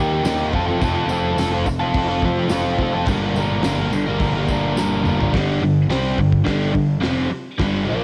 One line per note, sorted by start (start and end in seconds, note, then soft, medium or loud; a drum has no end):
0.00 0.23 D#2 medium
0.00 0.24 G3 medium
0.00 0.25 A#3 medium
0.00 0.25 D#4 medium
0.00 0.27 G4 medium
0.23 0.55 D#2 loud
0.23 0.51 D#3 loud
0.23 0.52 G3 loud
0.23 0.53 A#3 loud
0.23 0.52 D#4 loud
0.23 snare loud
0.23 open hi-hat medium
0.23 tambourine loud
0.28 0.53 G4 loud
0.52 0.80 F1 medium
0.52 0.80 F3 medium
0.52 0.69 C4 loud
0.52 0.67 F4 loud
0.52 0.65 A4 loud
0.52 kick medium
0.67 0.81 C4 medium
0.67 0.82 F4 medium
0.67 0.83 A4 medium
0.81 1.05 F1 medium
0.81 1.08 F3 loud
0.81 1.09 C4 medium
0.81 1.10 F4 medium
0.81 1.11 A4 loud
0.81 kick loud
0.81 tambourine medium
0.81 crash loud
1.06 1.34 F1 medium
1.06 1.36 F3 medium
1.06 tambourine medium
1.10 1.38 C4 medium
1.10 1.39 F4 medium
1.10 1.39 A4 medium
1.36 1.64 F1 loud
1.36 1.66 F3 medium
1.36 1.54 C4 medium
1.36 1.53 F4 medium
1.36 snare loud
1.36 open hi-hat medium
1.36 tambourine loud
1.40 1.51 A4 loud
1.52 1.66 C4 medium
1.52 1.66 F4 medium
1.52 1.66 A4 medium
1.66 1.93 F1 medium
1.66 muted overdriven electric guitar stroke medium
1.66 kick medium
1.66 tambourine medium
1.80 2.09 C4 medium
1.80 2.07 F4 medium
1.80 2.07 A4 medium
1.94 2.21 F1 loud
1.94 kick loud
1.94 open hi-hat medium
2.08 2.23 C4 medium
2.08 2.24 F4 medium
2.08 2.24 A4 medium
2.22 2.49 F1 medium
2.22 2.47 F3 medium
2.22 2.49 C4 medium
2.22 2.50 F4 medium
2.22 2.51 A4 medium
2.22 kick loud
2.48 2.77 F1 medium
2.48 2.77 F3 medium
2.48 2.79 C4 loud
2.48 2.80 F4 loud
2.48 2.81 A4 loud
2.48 snare loud
2.48 open hi-hat medium
2.48 tambourine loud
2.78 3.06 F1 medium
2.78 3.05 F3 medium
2.78 2.95 C4 medium
2.78 2.93 F4 medium
2.78 kick medium
2.82 2.92 A4 medium
2.93 3.07 C4 medium
2.93 3.06 F4 medium
2.93 3.05 A4 medium
3.06 3.34 G1 loud
3.06 3.63 G2 loud
3.06 3.63 D3 medium
3.06 3.36 G3 loud
3.06 kick loud
3.06 open hi-hat medium
3.06 tambourine medium
3.10 3.37 A#3 loud
3.10 3.37 D4 loud
3.10 3.38 A#4 loud
3.35 3.62 G1 loud
3.35 3.64 G3 medium
3.35 3.65 A#3 medium
3.35 3.65 D4 medium
3.35 tambourine medium
3.40 3.66 A#4 medium
3.63 3.90 G1 medium
3.63 4.06 G2 medium
3.63 4.06 D3 medium
3.63 3.81 G3 medium
3.63 3.80 A#3 medium
3.63 3.79 D4 loud
3.63 snare loud
3.63 open hi-hat medium
3.63 tambourine medium
3.67 3.78 A#4 loud
3.79 3.93 G3 medium
3.79 3.93 A#3 medium
3.79 3.93 D4 medium
3.79 3.93 A#4 medium
3.92 4.18 G1 medium
3.92 muted overdriven electric guitar stroke medium
3.92 tambourine medium
4.06 4.37 G3 medium
4.06 4.37 A#3 medium
4.06 4.35 D4 medium
4.06 4.34 A#4 medium
4.20 4.47 G1 loud
4.20 kick loud
4.20 open hi-hat medium
4.20 tambourine soft
4.35 4.48 G3 medium
4.35 4.49 A#3 medium
4.35 4.51 D4 medium
4.35 4.52 A#4 medium
4.48 4.75 G1 medium
4.48 4.76 G3 medium
4.48 4.77 A#3 medium
4.48 4.77 D4 medium
4.48 kick medium
4.48 tambourine medium
4.53 4.78 A#4 medium
4.76 5.03 G1 medium
4.76 5.31 G2 loud
4.76 5.31 D3 medium
4.76 5.04 G3 medium
4.76 5.06 A#3 loud
4.76 5.06 D4 loud
4.76 5.07 A#4 loud
4.76 snare medium
4.76 tambourine loud
5.04 5.31 G1 medium
5.04 5.21 G3 medium
5.04 5.21 A#3 medium
5.04 5.20 D4 medium
5.04 mid tom loud
5.04 tambourine soft
5.09 5.18 A#4 medium
5.19 5.33 G3 medium
5.19 5.33 A#3 medium
5.19 5.32 D4 medium
5.19 5.32 A#4 medium
5.19 floor tom loud
5.34 5.60 G1 loud
5.34 5.61 G2 medium
5.34 5.61 D3 loud
5.34 5.62 G3 loud
5.34 kick loud
5.34 snare loud
5.34 open hi-hat medium
5.61 5.87 G1 medium
5.61 5.85 G2 medium
5.61 5.85 D3 medium
5.88 6.15 C2 loud
5.88 6.17 C3 medium
5.88 6.17 G3 medium
5.88 6.17 C4 loud
5.88 snare loud
5.88 open hi-hat medium
6.18 6.44 G1 medium
6.18 6.41 G2 medium
6.18 6.41 D3 medium
6.18 kick medium
6.32 kick medium
6.45 6.72 G1 loud
6.45 6.72 G2 loud
6.45 6.72 D3 loud
6.45 6.74 G3 loud
6.45 kick loud
6.45 snare loud
6.45 open hi-hat medium
6.73 7.01 G1 medium
6.73 6.96 G2 medium
6.73 6.96 D3 medium
6.73 kick medium
7.01 7.29 F1 loud
7.01 7.29 F2 medium
7.01 7.30 C3 loud
7.01 7.30 F3 medium
7.01 snare loud
7.01 open hi-hat medium
7.31 muted picked electric bass stroke soft
7.31 muted overdriven electric guitar stroke medium
7.58 7.86 G1 loud
7.58 7.86 G2 loud
7.58 7.88 D3 loud
7.58 7.89 G3 loud
7.58 kick loud
7.58 snare loud
7.58 open hi-hat medium
7.88 8.04 A#1 loud
7.88 8.04 A#2 medium
7.88 8.04 F3 medium
7.88 8.04 A#3 loud